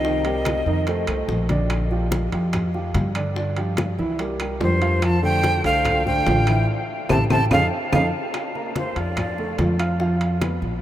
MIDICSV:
0, 0, Header, 1, 6, 480
1, 0, Start_track
1, 0, Tempo, 415225
1, 46, Time_signature, 4, 2, 24, 8
1, 12503, End_track
2, 0, Start_track
2, 0, Title_t, "Flute"
2, 0, Program_c, 0, 73
2, 0, Note_on_c, 0, 75, 76
2, 1203, Note_off_c, 0, 75, 0
2, 5337, Note_on_c, 0, 72, 88
2, 5815, Note_on_c, 0, 81, 103
2, 5832, Note_off_c, 0, 72, 0
2, 6045, Note_off_c, 0, 81, 0
2, 6052, Note_on_c, 0, 79, 112
2, 6496, Note_off_c, 0, 79, 0
2, 6531, Note_on_c, 0, 77, 101
2, 6975, Note_off_c, 0, 77, 0
2, 7015, Note_on_c, 0, 79, 116
2, 7684, Note_off_c, 0, 79, 0
2, 8212, Note_on_c, 0, 81, 90
2, 8363, Note_off_c, 0, 81, 0
2, 8449, Note_on_c, 0, 81, 97
2, 8601, Note_off_c, 0, 81, 0
2, 8694, Note_on_c, 0, 77, 89
2, 8844, Note_off_c, 0, 77, 0
2, 9171, Note_on_c, 0, 77, 83
2, 9323, Note_off_c, 0, 77, 0
2, 10142, Note_on_c, 0, 72, 67
2, 10377, Note_on_c, 0, 74, 76
2, 10394, Note_off_c, 0, 72, 0
2, 11091, Note_off_c, 0, 74, 0
2, 12503, End_track
3, 0, Start_track
3, 0, Title_t, "Upright piano"
3, 0, Program_c, 1, 0
3, 48, Note_on_c, 1, 51, 84
3, 50, Note_on_c, 1, 63, 80
3, 53, Note_on_c, 1, 75, 81
3, 244, Note_off_c, 1, 51, 0
3, 245, Note_off_c, 1, 63, 0
3, 247, Note_off_c, 1, 75, 0
3, 292, Note_on_c, 1, 55, 73
3, 296, Note_on_c, 1, 67, 70
3, 301, Note_on_c, 1, 70, 75
3, 683, Note_off_c, 1, 55, 0
3, 685, Note_off_c, 1, 67, 0
3, 688, Note_off_c, 1, 70, 0
3, 772, Note_on_c, 1, 51, 82
3, 777, Note_on_c, 1, 63, 71
3, 778, Note_on_c, 1, 75, 82
3, 966, Note_off_c, 1, 51, 0
3, 969, Note_off_c, 1, 63, 0
3, 970, Note_off_c, 1, 75, 0
3, 1016, Note_on_c, 1, 57, 66
3, 1017, Note_on_c, 1, 69, 74
3, 1021, Note_on_c, 1, 72, 71
3, 1208, Note_off_c, 1, 57, 0
3, 1209, Note_off_c, 1, 69, 0
3, 1211, Note_off_c, 1, 72, 0
3, 1247, Note_on_c, 1, 57, 62
3, 1248, Note_on_c, 1, 69, 72
3, 1254, Note_on_c, 1, 72, 68
3, 1640, Note_off_c, 1, 57, 0
3, 1640, Note_off_c, 1, 69, 0
3, 1644, Note_off_c, 1, 72, 0
3, 1724, Note_on_c, 1, 50, 85
3, 1732, Note_on_c, 1, 62, 81
3, 1734, Note_on_c, 1, 74, 82
3, 2118, Note_off_c, 1, 50, 0
3, 2123, Note_off_c, 1, 62, 0
3, 2124, Note_off_c, 1, 74, 0
3, 2212, Note_on_c, 1, 53, 78
3, 2214, Note_on_c, 1, 65, 72
3, 2216, Note_on_c, 1, 67, 68
3, 2603, Note_off_c, 1, 53, 0
3, 2604, Note_off_c, 1, 65, 0
3, 2605, Note_off_c, 1, 67, 0
3, 2684, Note_on_c, 1, 53, 65
3, 2688, Note_on_c, 1, 65, 64
3, 2690, Note_on_c, 1, 67, 69
3, 3078, Note_off_c, 1, 53, 0
3, 3080, Note_off_c, 1, 65, 0
3, 3082, Note_off_c, 1, 67, 0
3, 3171, Note_on_c, 1, 53, 68
3, 3172, Note_on_c, 1, 65, 64
3, 3177, Note_on_c, 1, 67, 72
3, 3562, Note_off_c, 1, 53, 0
3, 3563, Note_off_c, 1, 65, 0
3, 3566, Note_off_c, 1, 67, 0
3, 3648, Note_on_c, 1, 50, 87
3, 3652, Note_on_c, 1, 62, 89
3, 3655, Note_on_c, 1, 74, 78
3, 3843, Note_off_c, 1, 50, 0
3, 3846, Note_off_c, 1, 62, 0
3, 3848, Note_off_c, 1, 74, 0
3, 3885, Note_on_c, 1, 50, 81
3, 3889, Note_on_c, 1, 62, 84
3, 3891, Note_on_c, 1, 74, 85
3, 4082, Note_off_c, 1, 50, 0
3, 4084, Note_off_c, 1, 62, 0
3, 4085, Note_off_c, 1, 74, 0
3, 4130, Note_on_c, 1, 53, 77
3, 4134, Note_on_c, 1, 65, 77
3, 4136, Note_on_c, 1, 67, 72
3, 4522, Note_off_c, 1, 53, 0
3, 4524, Note_off_c, 1, 65, 0
3, 4525, Note_off_c, 1, 67, 0
3, 4613, Note_on_c, 1, 52, 79
3, 4615, Note_on_c, 1, 64, 84
3, 4618, Note_on_c, 1, 76, 84
3, 4807, Note_off_c, 1, 52, 0
3, 4808, Note_off_c, 1, 64, 0
3, 4810, Note_off_c, 1, 76, 0
3, 4847, Note_on_c, 1, 55, 66
3, 4849, Note_on_c, 1, 67, 73
3, 4855, Note_on_c, 1, 70, 70
3, 5043, Note_off_c, 1, 55, 0
3, 5044, Note_off_c, 1, 67, 0
3, 5048, Note_off_c, 1, 70, 0
3, 5085, Note_on_c, 1, 55, 66
3, 5089, Note_on_c, 1, 67, 70
3, 5093, Note_on_c, 1, 70, 72
3, 5479, Note_off_c, 1, 55, 0
3, 5481, Note_off_c, 1, 67, 0
3, 5484, Note_off_c, 1, 70, 0
3, 5566, Note_on_c, 1, 53, 81
3, 5568, Note_on_c, 1, 65, 84
3, 5573, Note_on_c, 1, 77, 87
3, 5959, Note_off_c, 1, 53, 0
3, 5961, Note_off_c, 1, 65, 0
3, 5964, Note_off_c, 1, 77, 0
3, 6043, Note_on_c, 1, 57, 70
3, 6047, Note_on_c, 1, 69, 69
3, 6049, Note_on_c, 1, 72, 77
3, 6438, Note_off_c, 1, 57, 0
3, 6441, Note_off_c, 1, 69, 0
3, 6442, Note_off_c, 1, 72, 0
3, 6529, Note_on_c, 1, 57, 66
3, 6533, Note_on_c, 1, 69, 71
3, 6533, Note_on_c, 1, 72, 72
3, 6921, Note_off_c, 1, 57, 0
3, 6924, Note_off_c, 1, 69, 0
3, 6924, Note_off_c, 1, 72, 0
3, 7007, Note_on_c, 1, 57, 65
3, 7010, Note_on_c, 1, 69, 76
3, 7013, Note_on_c, 1, 72, 69
3, 7400, Note_off_c, 1, 57, 0
3, 7402, Note_off_c, 1, 69, 0
3, 7404, Note_off_c, 1, 72, 0
3, 7486, Note_on_c, 1, 52, 78
3, 7491, Note_on_c, 1, 64, 78
3, 7492, Note_on_c, 1, 76, 81
3, 7683, Note_off_c, 1, 52, 0
3, 7686, Note_off_c, 1, 64, 0
3, 7687, Note_off_c, 1, 76, 0
3, 8199, Note_on_c, 1, 69, 76
3, 8200, Note_on_c, 1, 67, 81
3, 8203, Note_on_c, 1, 64, 78
3, 8355, Note_off_c, 1, 69, 0
3, 8356, Note_off_c, 1, 67, 0
3, 8358, Note_off_c, 1, 64, 0
3, 8444, Note_on_c, 1, 64, 91
3, 8445, Note_on_c, 1, 67, 85
3, 8446, Note_on_c, 1, 69, 77
3, 8599, Note_off_c, 1, 64, 0
3, 8599, Note_off_c, 1, 67, 0
3, 8600, Note_off_c, 1, 69, 0
3, 8685, Note_on_c, 1, 65, 92
3, 8686, Note_on_c, 1, 69, 100
3, 8687, Note_on_c, 1, 63, 95
3, 8839, Note_off_c, 1, 65, 0
3, 8839, Note_off_c, 1, 69, 0
3, 8840, Note_off_c, 1, 63, 0
3, 9166, Note_on_c, 1, 63, 100
3, 9166, Note_on_c, 1, 65, 91
3, 9168, Note_on_c, 1, 69, 93
3, 9320, Note_off_c, 1, 63, 0
3, 9320, Note_off_c, 1, 65, 0
3, 9321, Note_off_c, 1, 69, 0
3, 9887, Note_on_c, 1, 58, 70
3, 9890, Note_on_c, 1, 70, 64
3, 9894, Note_on_c, 1, 82, 67
3, 10280, Note_off_c, 1, 58, 0
3, 10282, Note_off_c, 1, 70, 0
3, 10284, Note_off_c, 1, 82, 0
3, 10369, Note_on_c, 1, 65, 71
3, 10369, Note_on_c, 1, 77, 65
3, 10373, Note_on_c, 1, 89, 62
3, 10761, Note_off_c, 1, 65, 0
3, 10761, Note_off_c, 1, 77, 0
3, 10764, Note_off_c, 1, 89, 0
3, 10849, Note_on_c, 1, 57, 66
3, 10849, Note_on_c, 1, 69, 69
3, 10856, Note_on_c, 1, 81, 67
3, 11241, Note_off_c, 1, 57, 0
3, 11241, Note_off_c, 1, 69, 0
3, 11245, Note_off_c, 1, 81, 0
3, 11325, Note_on_c, 1, 65, 62
3, 11326, Note_on_c, 1, 77, 74
3, 11329, Note_on_c, 1, 89, 74
3, 11522, Note_off_c, 1, 65, 0
3, 11522, Note_off_c, 1, 77, 0
3, 11525, Note_off_c, 1, 89, 0
3, 11565, Note_on_c, 1, 53, 80
3, 11568, Note_on_c, 1, 65, 77
3, 11574, Note_on_c, 1, 77, 81
3, 11959, Note_off_c, 1, 53, 0
3, 11960, Note_off_c, 1, 65, 0
3, 11964, Note_off_c, 1, 77, 0
3, 12044, Note_on_c, 1, 59, 60
3, 12049, Note_on_c, 1, 71, 62
3, 12051, Note_on_c, 1, 83, 64
3, 12438, Note_off_c, 1, 59, 0
3, 12441, Note_off_c, 1, 71, 0
3, 12442, Note_off_c, 1, 83, 0
3, 12503, End_track
4, 0, Start_track
4, 0, Title_t, "Trombone"
4, 0, Program_c, 2, 57
4, 0, Note_on_c, 2, 48, 61
4, 1197, Note_off_c, 2, 48, 0
4, 5322, Note_on_c, 2, 43, 81
4, 5800, Note_on_c, 2, 53, 94
4, 5818, Note_off_c, 2, 43, 0
4, 6034, Note_off_c, 2, 53, 0
4, 6041, Note_on_c, 2, 50, 87
4, 6490, Note_off_c, 2, 50, 0
4, 6524, Note_on_c, 2, 50, 75
4, 6972, Note_off_c, 2, 50, 0
4, 7005, Note_on_c, 2, 50, 88
4, 7680, Note_off_c, 2, 50, 0
4, 8203, Note_on_c, 2, 48, 94
4, 8319, Note_off_c, 2, 48, 0
4, 8441, Note_on_c, 2, 48, 94
4, 8558, Note_off_c, 2, 48, 0
4, 8682, Note_on_c, 2, 49, 96
4, 8798, Note_off_c, 2, 49, 0
4, 9160, Note_on_c, 2, 49, 85
4, 9277, Note_off_c, 2, 49, 0
4, 12503, End_track
5, 0, Start_track
5, 0, Title_t, "Upright bass"
5, 0, Program_c, 3, 32
5, 0, Note_on_c, 3, 36, 92
5, 693, Note_off_c, 3, 36, 0
5, 761, Note_on_c, 3, 41, 81
5, 1209, Note_off_c, 3, 41, 0
5, 1242, Note_on_c, 3, 36, 74
5, 1466, Note_off_c, 3, 36, 0
5, 1483, Note_on_c, 3, 34, 94
5, 2614, Note_off_c, 3, 34, 0
5, 2683, Note_on_c, 3, 41, 84
5, 3358, Note_off_c, 3, 41, 0
5, 3402, Note_on_c, 3, 43, 95
5, 4534, Note_off_c, 3, 43, 0
5, 4605, Note_on_c, 3, 36, 83
5, 5279, Note_off_c, 3, 36, 0
5, 5324, Note_on_c, 3, 41, 94
5, 6455, Note_off_c, 3, 41, 0
5, 6521, Note_on_c, 3, 36, 82
5, 7197, Note_off_c, 3, 36, 0
5, 7241, Note_on_c, 3, 33, 91
5, 7690, Note_off_c, 3, 33, 0
5, 8199, Note_on_c, 3, 33, 92
5, 8381, Note_off_c, 3, 33, 0
5, 8440, Note_on_c, 3, 33, 92
5, 8621, Note_off_c, 3, 33, 0
5, 8680, Note_on_c, 3, 41, 88
5, 8861, Note_off_c, 3, 41, 0
5, 9159, Note_on_c, 3, 41, 96
5, 9341, Note_off_c, 3, 41, 0
5, 10357, Note_on_c, 3, 41, 80
5, 11035, Note_off_c, 3, 41, 0
5, 11080, Note_on_c, 3, 41, 91
5, 12212, Note_off_c, 3, 41, 0
5, 12276, Note_on_c, 3, 34, 87
5, 12503, Note_off_c, 3, 34, 0
5, 12503, End_track
6, 0, Start_track
6, 0, Title_t, "Drums"
6, 55, Note_on_c, 9, 60, 71
6, 55, Note_on_c, 9, 63, 31
6, 170, Note_off_c, 9, 60, 0
6, 170, Note_off_c, 9, 63, 0
6, 285, Note_on_c, 9, 65, 71
6, 294, Note_on_c, 9, 63, 35
6, 401, Note_off_c, 9, 65, 0
6, 409, Note_off_c, 9, 63, 0
6, 524, Note_on_c, 9, 65, 91
6, 532, Note_on_c, 9, 75, 61
6, 534, Note_on_c, 9, 60, 59
6, 535, Note_on_c, 9, 63, 98
6, 639, Note_off_c, 9, 65, 0
6, 647, Note_off_c, 9, 75, 0
6, 650, Note_off_c, 9, 60, 0
6, 650, Note_off_c, 9, 63, 0
6, 773, Note_on_c, 9, 60, 32
6, 778, Note_on_c, 9, 63, 34
6, 889, Note_off_c, 9, 60, 0
6, 893, Note_off_c, 9, 63, 0
6, 1004, Note_on_c, 9, 65, 68
6, 1013, Note_on_c, 9, 60, 62
6, 1017, Note_on_c, 9, 63, 31
6, 1119, Note_off_c, 9, 65, 0
6, 1128, Note_off_c, 9, 60, 0
6, 1132, Note_off_c, 9, 63, 0
6, 1242, Note_on_c, 9, 65, 91
6, 1249, Note_on_c, 9, 60, 34
6, 1250, Note_on_c, 9, 75, 66
6, 1253, Note_on_c, 9, 63, 33
6, 1357, Note_off_c, 9, 65, 0
6, 1365, Note_off_c, 9, 60, 0
6, 1366, Note_off_c, 9, 75, 0
6, 1369, Note_off_c, 9, 63, 0
6, 1488, Note_on_c, 9, 60, 61
6, 1488, Note_on_c, 9, 61, 76
6, 1493, Note_on_c, 9, 63, 35
6, 1604, Note_off_c, 9, 60, 0
6, 1604, Note_off_c, 9, 61, 0
6, 1609, Note_off_c, 9, 63, 0
6, 1724, Note_on_c, 9, 65, 62
6, 1728, Note_on_c, 9, 60, 76
6, 1736, Note_on_c, 9, 63, 72
6, 1840, Note_off_c, 9, 65, 0
6, 1843, Note_off_c, 9, 60, 0
6, 1851, Note_off_c, 9, 63, 0
6, 1964, Note_on_c, 9, 65, 92
6, 1967, Note_on_c, 9, 75, 63
6, 1968, Note_on_c, 9, 60, 61
6, 1976, Note_on_c, 9, 63, 32
6, 2080, Note_off_c, 9, 65, 0
6, 2083, Note_off_c, 9, 75, 0
6, 2084, Note_off_c, 9, 60, 0
6, 2092, Note_off_c, 9, 63, 0
6, 2206, Note_on_c, 9, 60, 35
6, 2212, Note_on_c, 9, 63, 34
6, 2321, Note_off_c, 9, 60, 0
6, 2328, Note_off_c, 9, 63, 0
6, 2445, Note_on_c, 9, 60, 60
6, 2448, Note_on_c, 9, 63, 97
6, 2448, Note_on_c, 9, 65, 69
6, 2561, Note_off_c, 9, 60, 0
6, 2563, Note_off_c, 9, 63, 0
6, 2564, Note_off_c, 9, 65, 0
6, 2687, Note_on_c, 9, 60, 31
6, 2687, Note_on_c, 9, 65, 64
6, 2691, Note_on_c, 9, 63, 36
6, 2802, Note_off_c, 9, 60, 0
6, 2803, Note_off_c, 9, 65, 0
6, 2807, Note_off_c, 9, 63, 0
6, 2925, Note_on_c, 9, 65, 93
6, 2927, Note_on_c, 9, 60, 67
6, 2928, Note_on_c, 9, 75, 55
6, 2933, Note_on_c, 9, 63, 34
6, 2933, Note_on_c, 9, 64, 82
6, 3041, Note_off_c, 9, 65, 0
6, 3042, Note_off_c, 9, 60, 0
6, 3043, Note_off_c, 9, 75, 0
6, 3048, Note_off_c, 9, 63, 0
6, 3048, Note_off_c, 9, 64, 0
6, 3170, Note_on_c, 9, 63, 36
6, 3171, Note_on_c, 9, 60, 36
6, 3286, Note_off_c, 9, 63, 0
6, 3287, Note_off_c, 9, 60, 0
6, 3404, Note_on_c, 9, 65, 72
6, 3408, Note_on_c, 9, 60, 62
6, 3408, Note_on_c, 9, 61, 74
6, 3408, Note_on_c, 9, 63, 83
6, 3520, Note_off_c, 9, 65, 0
6, 3523, Note_off_c, 9, 60, 0
6, 3523, Note_off_c, 9, 61, 0
6, 3524, Note_off_c, 9, 63, 0
6, 3642, Note_on_c, 9, 65, 87
6, 3651, Note_on_c, 9, 63, 31
6, 3651, Note_on_c, 9, 75, 59
6, 3758, Note_off_c, 9, 65, 0
6, 3766, Note_off_c, 9, 63, 0
6, 3767, Note_off_c, 9, 75, 0
6, 3889, Note_on_c, 9, 60, 68
6, 3892, Note_on_c, 9, 63, 32
6, 4004, Note_off_c, 9, 60, 0
6, 4008, Note_off_c, 9, 63, 0
6, 4121, Note_on_c, 9, 65, 66
6, 4134, Note_on_c, 9, 63, 36
6, 4237, Note_off_c, 9, 65, 0
6, 4249, Note_off_c, 9, 63, 0
6, 4359, Note_on_c, 9, 65, 91
6, 4370, Note_on_c, 9, 60, 58
6, 4372, Note_on_c, 9, 63, 96
6, 4372, Note_on_c, 9, 75, 58
6, 4474, Note_off_c, 9, 65, 0
6, 4486, Note_off_c, 9, 60, 0
6, 4488, Note_off_c, 9, 63, 0
6, 4488, Note_off_c, 9, 75, 0
6, 4609, Note_on_c, 9, 60, 34
6, 4612, Note_on_c, 9, 63, 36
6, 4725, Note_off_c, 9, 60, 0
6, 4728, Note_off_c, 9, 63, 0
6, 4845, Note_on_c, 9, 65, 69
6, 4848, Note_on_c, 9, 60, 60
6, 4853, Note_on_c, 9, 63, 36
6, 4960, Note_off_c, 9, 65, 0
6, 4964, Note_off_c, 9, 60, 0
6, 4968, Note_off_c, 9, 63, 0
6, 5083, Note_on_c, 9, 65, 90
6, 5091, Note_on_c, 9, 75, 66
6, 5093, Note_on_c, 9, 60, 35
6, 5093, Note_on_c, 9, 63, 37
6, 5198, Note_off_c, 9, 65, 0
6, 5207, Note_off_c, 9, 75, 0
6, 5208, Note_off_c, 9, 63, 0
6, 5209, Note_off_c, 9, 60, 0
6, 5324, Note_on_c, 9, 66, 77
6, 5328, Note_on_c, 9, 60, 60
6, 5328, Note_on_c, 9, 61, 79
6, 5333, Note_on_c, 9, 63, 34
6, 5440, Note_off_c, 9, 66, 0
6, 5443, Note_off_c, 9, 60, 0
6, 5443, Note_off_c, 9, 61, 0
6, 5449, Note_off_c, 9, 63, 0
6, 5568, Note_on_c, 9, 65, 66
6, 5683, Note_off_c, 9, 65, 0
6, 5805, Note_on_c, 9, 60, 70
6, 5807, Note_on_c, 9, 65, 90
6, 5808, Note_on_c, 9, 75, 60
6, 5813, Note_on_c, 9, 63, 31
6, 5920, Note_off_c, 9, 60, 0
6, 5922, Note_off_c, 9, 65, 0
6, 5924, Note_off_c, 9, 75, 0
6, 5929, Note_off_c, 9, 63, 0
6, 6047, Note_on_c, 9, 60, 33
6, 6052, Note_on_c, 9, 63, 36
6, 6163, Note_off_c, 9, 60, 0
6, 6168, Note_off_c, 9, 63, 0
6, 6283, Note_on_c, 9, 65, 69
6, 6285, Note_on_c, 9, 60, 60
6, 6292, Note_on_c, 9, 63, 94
6, 6399, Note_off_c, 9, 65, 0
6, 6401, Note_off_c, 9, 60, 0
6, 6408, Note_off_c, 9, 63, 0
6, 6524, Note_on_c, 9, 60, 30
6, 6524, Note_on_c, 9, 65, 63
6, 6534, Note_on_c, 9, 63, 35
6, 6639, Note_off_c, 9, 60, 0
6, 6639, Note_off_c, 9, 65, 0
6, 6649, Note_off_c, 9, 63, 0
6, 6759, Note_on_c, 9, 60, 61
6, 6767, Note_on_c, 9, 65, 91
6, 6768, Note_on_c, 9, 75, 58
6, 6772, Note_on_c, 9, 63, 38
6, 6772, Note_on_c, 9, 64, 84
6, 6875, Note_off_c, 9, 60, 0
6, 6882, Note_off_c, 9, 65, 0
6, 6884, Note_off_c, 9, 75, 0
6, 6887, Note_off_c, 9, 63, 0
6, 6887, Note_off_c, 9, 64, 0
6, 7003, Note_on_c, 9, 60, 38
6, 7014, Note_on_c, 9, 63, 34
6, 7014, Note_on_c, 9, 64, 70
6, 7118, Note_off_c, 9, 60, 0
6, 7129, Note_off_c, 9, 63, 0
6, 7129, Note_off_c, 9, 64, 0
6, 7243, Note_on_c, 9, 60, 66
6, 7243, Note_on_c, 9, 61, 80
6, 7243, Note_on_c, 9, 65, 70
6, 7243, Note_on_c, 9, 66, 79
6, 7253, Note_on_c, 9, 63, 88
6, 7358, Note_off_c, 9, 60, 0
6, 7358, Note_off_c, 9, 61, 0
6, 7358, Note_off_c, 9, 65, 0
6, 7358, Note_off_c, 9, 66, 0
6, 7369, Note_off_c, 9, 63, 0
6, 7479, Note_on_c, 9, 65, 92
6, 7488, Note_on_c, 9, 75, 65
6, 7493, Note_on_c, 9, 63, 32
6, 7594, Note_off_c, 9, 65, 0
6, 7603, Note_off_c, 9, 75, 0
6, 7608, Note_off_c, 9, 63, 0
6, 8200, Note_on_c, 9, 65, 101
6, 8201, Note_on_c, 9, 60, 84
6, 8206, Note_on_c, 9, 75, 90
6, 8208, Note_on_c, 9, 63, 105
6, 8316, Note_off_c, 9, 60, 0
6, 8316, Note_off_c, 9, 65, 0
6, 8322, Note_off_c, 9, 75, 0
6, 8324, Note_off_c, 9, 63, 0
6, 8441, Note_on_c, 9, 60, 85
6, 8442, Note_on_c, 9, 63, 101
6, 8444, Note_on_c, 9, 65, 93
6, 8444, Note_on_c, 9, 75, 89
6, 8556, Note_off_c, 9, 60, 0
6, 8558, Note_off_c, 9, 63, 0
6, 8560, Note_off_c, 9, 65, 0
6, 8560, Note_off_c, 9, 75, 0
6, 8680, Note_on_c, 9, 65, 102
6, 8682, Note_on_c, 9, 60, 87
6, 8682, Note_on_c, 9, 63, 103
6, 8686, Note_on_c, 9, 75, 92
6, 8796, Note_off_c, 9, 65, 0
6, 8797, Note_off_c, 9, 60, 0
6, 8797, Note_off_c, 9, 63, 0
6, 8801, Note_off_c, 9, 75, 0
6, 9162, Note_on_c, 9, 60, 88
6, 9162, Note_on_c, 9, 65, 107
6, 9164, Note_on_c, 9, 75, 94
6, 9166, Note_on_c, 9, 63, 102
6, 9277, Note_off_c, 9, 65, 0
6, 9278, Note_off_c, 9, 60, 0
6, 9280, Note_off_c, 9, 75, 0
6, 9281, Note_off_c, 9, 63, 0
6, 9640, Note_on_c, 9, 60, 67
6, 9642, Note_on_c, 9, 65, 83
6, 9645, Note_on_c, 9, 75, 64
6, 9648, Note_on_c, 9, 63, 31
6, 9756, Note_off_c, 9, 60, 0
6, 9757, Note_off_c, 9, 65, 0
6, 9760, Note_off_c, 9, 75, 0
6, 9763, Note_off_c, 9, 63, 0
6, 9886, Note_on_c, 9, 60, 34
6, 9888, Note_on_c, 9, 63, 33
6, 10002, Note_off_c, 9, 60, 0
6, 10004, Note_off_c, 9, 63, 0
6, 10121, Note_on_c, 9, 65, 59
6, 10124, Note_on_c, 9, 63, 91
6, 10127, Note_on_c, 9, 60, 51
6, 10237, Note_off_c, 9, 65, 0
6, 10239, Note_off_c, 9, 63, 0
6, 10243, Note_off_c, 9, 60, 0
6, 10360, Note_on_c, 9, 65, 66
6, 10363, Note_on_c, 9, 63, 32
6, 10366, Note_on_c, 9, 60, 27
6, 10476, Note_off_c, 9, 65, 0
6, 10478, Note_off_c, 9, 63, 0
6, 10482, Note_off_c, 9, 60, 0
6, 10599, Note_on_c, 9, 65, 93
6, 10604, Note_on_c, 9, 60, 61
6, 10604, Note_on_c, 9, 75, 63
6, 10608, Note_on_c, 9, 63, 29
6, 10608, Note_on_c, 9, 64, 85
6, 10714, Note_off_c, 9, 65, 0
6, 10720, Note_off_c, 9, 60, 0
6, 10720, Note_off_c, 9, 75, 0
6, 10723, Note_off_c, 9, 63, 0
6, 10723, Note_off_c, 9, 64, 0
6, 10845, Note_on_c, 9, 60, 34
6, 10849, Note_on_c, 9, 63, 31
6, 10961, Note_off_c, 9, 60, 0
6, 10964, Note_off_c, 9, 63, 0
6, 11080, Note_on_c, 9, 65, 66
6, 11080, Note_on_c, 9, 66, 74
6, 11083, Note_on_c, 9, 60, 61
6, 11083, Note_on_c, 9, 61, 77
6, 11085, Note_on_c, 9, 63, 80
6, 11196, Note_off_c, 9, 65, 0
6, 11196, Note_off_c, 9, 66, 0
6, 11199, Note_off_c, 9, 60, 0
6, 11199, Note_off_c, 9, 61, 0
6, 11200, Note_off_c, 9, 63, 0
6, 11323, Note_on_c, 9, 65, 84
6, 11325, Note_on_c, 9, 75, 63
6, 11329, Note_on_c, 9, 63, 31
6, 11439, Note_off_c, 9, 65, 0
6, 11440, Note_off_c, 9, 75, 0
6, 11445, Note_off_c, 9, 63, 0
6, 11558, Note_on_c, 9, 60, 64
6, 11563, Note_on_c, 9, 63, 28
6, 11673, Note_off_c, 9, 60, 0
6, 11678, Note_off_c, 9, 63, 0
6, 11802, Note_on_c, 9, 65, 73
6, 11804, Note_on_c, 9, 63, 35
6, 11918, Note_off_c, 9, 65, 0
6, 11920, Note_off_c, 9, 63, 0
6, 12038, Note_on_c, 9, 60, 55
6, 12040, Note_on_c, 9, 65, 83
6, 12042, Note_on_c, 9, 63, 84
6, 12042, Note_on_c, 9, 75, 58
6, 12153, Note_off_c, 9, 60, 0
6, 12156, Note_off_c, 9, 65, 0
6, 12158, Note_off_c, 9, 63, 0
6, 12158, Note_off_c, 9, 75, 0
6, 12276, Note_on_c, 9, 60, 29
6, 12282, Note_on_c, 9, 63, 33
6, 12391, Note_off_c, 9, 60, 0
6, 12397, Note_off_c, 9, 63, 0
6, 12503, End_track
0, 0, End_of_file